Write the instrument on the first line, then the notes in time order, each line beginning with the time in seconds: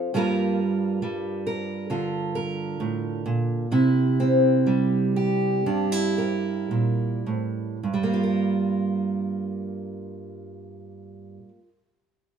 steel-string acoustic guitar
Already playing: F3
0.14 G2 G3 A#3 F4 A#4
1.02 G3
1.47 A#4
1.90 D3 F4
2.35 A#4
2.80 A2
3.26 A#2
3.72 C3 E4
4.20 C4
4.66 G3
5.16 G4
5.66 G2 D4
5.92 E4
6.18 A#4
6.71 A#2
7.26 A2
7.83 G2
7.94 G3
8.03 A#3
8.13 F4
8.23 A#4